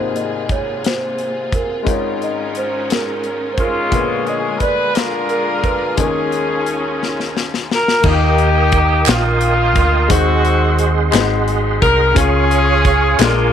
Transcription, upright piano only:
Already playing: G#1 G#2 C3 G#3 D#4 F4 A#4
1.83 G#1 G#2 G#3 C#4 D#4
1.87 F4 A#4
3.89 A#1 A#2 D3 G#3 B3 F4
3.95 A#3
5.95 D#2 D#3 G#3 A#3 C#4
5.99 D#4 A#4
8.01 D#3 A#3 D#4
8.08 F4
8.14 G4
10.08 D#3 G#3 C4 D#4 F#4 C5
11.11 G#2 G#3 C4 D#4 F#4 B4
11.21 C5
12.15 C#3 C#4 F4 G#4
13.18 A#2 G#3 A#3 D4 F4 A4
13.27 A#4

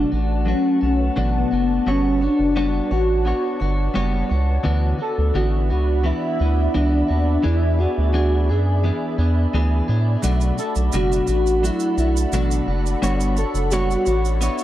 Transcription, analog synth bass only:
0.13 A1
0.83 B1
1.17 A1
1.52 F#1
1.87 G1
2.39 F#1
2.91 A1
3.61 G1
3.96 F#1
4.31 C#2
4.66 D2
5.18 D2
5.35 A1
5.71 C#2
6.40 D2
6.76 C#2
7.10 D#2
7.45 E2
7.98 D2
8.50 F#2
9.18 E2
9.54 D2
9.89 A2
10.24 B1
10.76 B1
10.94 F#1
11.28 A1
11.98 B1
12.32 A1
12.67 F#1
13.03 G1
13.54 F#1
14.07 A1

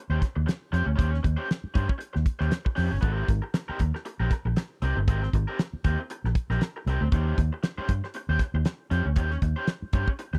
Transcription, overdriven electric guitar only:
0.10 C#4 G4 C5
0.21 muted overdriven electric guitar stroke
0.36 muted overdriven electric guitar stroke
0.46 muted overdriven electric guitar stroke
0.72 C#4 G4 C5
0.86 muted overdriven electric guitar stroke
0.96 C#4 G4 C5
1.11 muted overdriven electric guitar stroke
1.23 muted overdriven electric guitar stroke
1.37 C#4 G4 C5
1.48 muted overdriven electric guitar stroke
1.74 C#4 G4 C5
1.88 muted overdriven electric guitar stroke
1.98 muted overdriven electric guitar stroke
2.13 muted overdriven electric guitar stroke
2.39 C#4 G4 C5
2.51 muted overdriven electric guitar stroke
2.65 muted overdriven electric guitar stroke
2.76 C#4 G4 C5
2.91 muted overdriven electric guitar stroke
3.01 C4 G4 A#4
3.42 muted overdriven electric guitar stroke
3.54 muted overdriven electric guitar stroke
3.69 C4 G4 A#4
3.80 muted overdriven electric guitar stroke
3.95 muted overdriven electric guitar stroke
4.05 muted overdriven electric guitar stroke
4.20 C4 G4 A#4
4.31 muted overdriven electric guitar stroke
4.46 muted overdriven electric guitar stroke
4.57 muted overdriven electric guitar stroke
4.82 C4 G4 A#4
4.97 muted overdriven electric guitar stroke
5.09 C4 G4 A#4
5.23 muted overdriven electric guitar stroke
5.35 muted overdriven electric guitar stroke
5.48 C4 G4 A#4
5.59 muted overdriven electric guitar stroke
5.85 C4 G4 A#4
5.99 muted overdriven electric guitar stroke
6.11 muted overdriven electric guitar stroke
6.26 muted overdriven electric guitar stroke
6.50 C4 G4 A#4
6.62 muted overdriven electric guitar stroke
6.76 muted overdriven electric guitar stroke
6.88 C4 G4 A#4
7.02 muted overdriven electric guitar stroke
7.12 C#4 G4 C5
7.53 muted overdriven electric guitar stroke
7.63 muted overdriven electric guitar stroke
7.78 C#4 G4 C5
7.90 muted overdriven electric guitar stroke
8.04 muted overdriven electric guitar stroke
8.15 muted overdriven electric guitar stroke
8.29 C#4 G4 C5
8.40 muted overdriven electric guitar stroke
8.55 muted overdriven electric guitar stroke
8.66 muted overdriven electric guitar stroke
8.91 C#4 G4 C5
9.05 muted overdriven electric guitar stroke
9.16 C#4 G4 C5
9.32 muted overdriven electric guitar stroke
9.42 muted overdriven electric guitar stroke
9.56 C#4 G4 C5
9.69 muted overdriven electric guitar stroke
9.93 C#4 G4 C5
10.08 muted overdriven electric guitar stroke
10.19 muted overdriven electric guitar stroke
10.33 muted overdriven electric guitar stroke

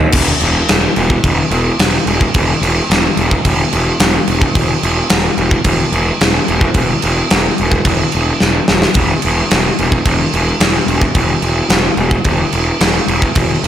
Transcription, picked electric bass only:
0.14 E1
0.42 E1
0.69 E1
0.97 E1
1.24 E1
1.51 E1
1.79 E1
2.06 E1
2.35 E1
2.62 E1
2.90 E1
3.17 E1
3.46 E1
3.73 E1
4.00 E1
4.28 E1
4.55 E1
4.83 E1
5.11 E1
5.38 E1
5.65 E1
5.92 E1
6.21 E1
6.49 E1
6.74 E1
7.04 E1
7.31 E1
7.60 E1
7.85 E1
8.15 E1
8.42 E1
8.69 E1
8.95 E1
9.25 E1
9.52 E1
9.79 E1
10.05 E1
10.34 E1
10.60 E1
10.87 E1
11.15 E1
11.43 E1
11.70 E1
11.97 E1
12.25 E1
12.53 E1
12.81 E1
13.08 E1
13.36 E1
13.64 E1

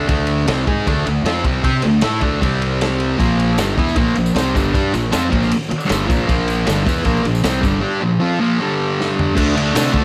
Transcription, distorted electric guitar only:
0.08 D3 A3 D4
0.47 C3 G3 C4
0.66 G#3 D#4 G#4
0.86 D3 A3 D4
1.06 D3 A3
1.25 F3 C4 F4
1.45 C3 G3 C4
1.64 C4 G4 C5
1.83 D3 A3
2.03 A3 E4 A4
2.21 D3 A3 D4
2.41 C3 G3 C4
3.18 A#2 F3 A#3
3.59 G2 D3 G3
3.78 E3 B3 E4
3.96 A#2 F3 A#3
4.17 A#2 F3
4.35 C3 G3 C4
4.54 G2 D3 G3
4.73 G3 D4 G4
4.92 A#2 F3
5.12 F3 C4 F4
5.30 A#2 F3 A#3
5.69 muted distorted electric guitar stroke
5.85 G2 D3 G3
6.06 A#2 F3 A#3
6.26 A#2 F3 A#3
6.66 G2 D3 G3
6.86 E3 B3 E4
7.04 A#2 F3 A#3
7.24 A#2 F3
7.43 C3 G3 C4
7.60 G2 D3 G3
7.80 G3 D4 G4
8.01 A#2 F3
8.20 F3 C4 F4
8.40 A#2 F3 A#3
8.60 G2 D3 G3
9.35 D3 A3 D4
9.56 D3 A3 D4
9.74 D3 A3 D4
9.92 D3 A3 D4

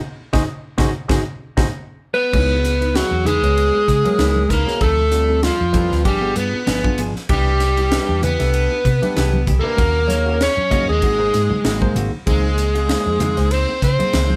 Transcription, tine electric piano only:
0.33 D#4 F#4 G#4 C5 D#5
0.78 D#4 F#4 G#4 C5 D#5
1.08 D#4 F#4 G#4 C5 D#5
1.57 D#4 F#4 G#4 C5 D#5
2.32 F#3 B3 E4 G#4
2.94 F#3 B3 E4 G#4
3.42 F#3 B3 E4 B4
4.04 F#3 B3 E4 A#4
4.67 F#3 B3 E4 G#4
5.11 G3 C4 F4 A4
5.72 G3 C4 F4 B4
6.21 B3 D4 F4 G#4
6.84 B3 D4 F4 G#4
7.29 A3 D4 G4 B4
7.91 A3 D4 G4 B4
8.39 A3 D4 G4 A4
9.02 A3 D4 G4 B4
9.63 A3 D4 G4 B4
10.07 A#3 D#4 G#4 C#5
10.71 A#3 D#4 G#4 D#5
11.19 A#3 D#4 G#4 C5
11.81 A#3 D#4 G#4 C5
12.27 A#3 D#4 G#4 C5
12.88 A#3 D#4 G#4 C5
13.36 A#3 D#4 G#4 C5
13.99 A#3 D#4 G#4 C5

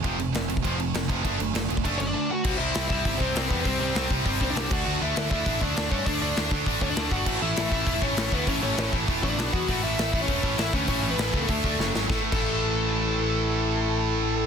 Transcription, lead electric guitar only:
1.98 C#4 C#5
2.07 D4 D5
2.31 F#4 F#5
2.58 E4 E5
2.88 E4 E5
3.18 C4 C5
3.48 B3 B4
3.62 C4 B4 C5
3.80 C4 C5
4.42 C4 C5
4.49 D4 D5
4.71 F#4 F#5
5.02 E4 E5
5.30 E4 E5
5.62 D4 D5
5.91 C#4 C#5
6.06 D4 D5
6.22 D4 D5
6.82 C#4 C#5
6.89 D4 D5
7.12 F#4 F#5
7.42 E4 E5
7.71 E4 E5
8.01 C#4 C#5
8.34 B3 B4
8.48 C#4 C#5
8.63 C#4 C#5
9.23 C#4 C#5
9.28 D4 D5
9.53 F#4 F#5
9.83 E4 E5
10.12 E4 E5
10.21 C#4 C#5
10.58 E4 E5
10.73 C#4 C#5
10.88 C#4 C#5
11.11 B3 B4
11.35 A3 A4
12.10 A4
12.32 A4

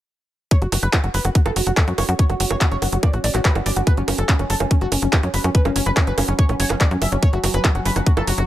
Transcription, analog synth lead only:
0.51 C#5
0.62 F#4
0.72 F#4
0.83 B4
0.93 F#4
1.04 F#4
1.14 B4
1.25 F#4
1.35 F#4
1.46 A4
1.56 F#4
1.67 F#4
1.77 A4
1.88 F#4
1.98 C#5
2.09 F#4
2.19 C#5
2.29 F#4
2.40 F#4
2.50 C#5
2.61 F#4
2.71 C#5
2.82 F#4
2.92 F#4
3.03 D5
3.13 F#4
3.24 D5
3.34 F#4
3.45 B4
3.55 F#4
3.66 D5
3.76 F#4
3.87 B4
3.97 C#4
4.08 C#4
4.18 A4
4.29 C#4
4.39 C#4
4.50 A4
4.60 C#4
4.71 C#4
4.81 F#4
4.92 C#4
5.02 C#4
5.13 G4
5.23 C#4
5.34 B4
5.44 C#4
5.55 B4
5.65 C#4
5.76 C#4
5.86 B4
5.97 C#4
6.07 B4
6.18 C#4
6.28 C#4
6.39 C#5
6.49 C#4
6.60 C#5
6.70 C#4
6.81 D5
6.91 C#4
7.02 E5
7.12 C#4
7.23 C#5
7.33 F#4
7.43 F#4
7.54 B4
7.64 F#4
7.75 F#4
7.85 B4
7.96 F#4
8.06 F#4
8.17 A4
8.27 F#4
8.38 F#4

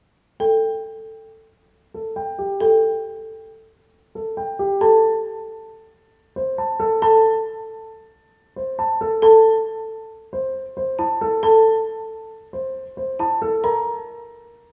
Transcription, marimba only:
0.40 A4
2.60 A4
4.81 A4
7.02 A4
9.22 A4
10.99 E4
11.43 A4
13.19 E4
13.64 A#4

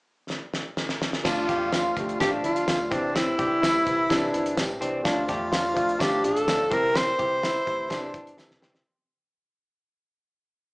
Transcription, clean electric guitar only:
1.26 D4
1.49 G4
1.72 F4
2.20 D4
2.91 C4
3.14 C4
3.39 G4
3.62 E4
4.10 D4
4.81 C4
5.05 D4
5.29 G4
5.52 F4
5.99 D4
6.71 C4
6.94 C4
7.19 G4
7.43 E4
7.90 D4
8.63 C4

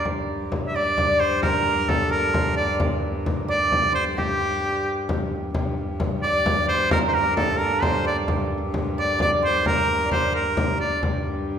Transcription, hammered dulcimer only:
Already playing: A#4 C5 D5
0.76 D5
0.97 D5
1.20 C5
1.43 A#4
1.88 A4
2.10 A#4
2.33 C5
2.57 D5
3.48 D5
3.93 C5
4.17 G4
6.24 D5
6.69 C5
6.92 A#4
7.14 A#4
7.36 A4
7.53 C5
7.59 A#4
7.82 C5
8.05 D5
8.98 D5
9.19 D5
9.42 C5
9.60 C5
9.66 A#4
9.88 A#4
10.05 D5
10.12 C5
10.33 A#4
10.78 D5

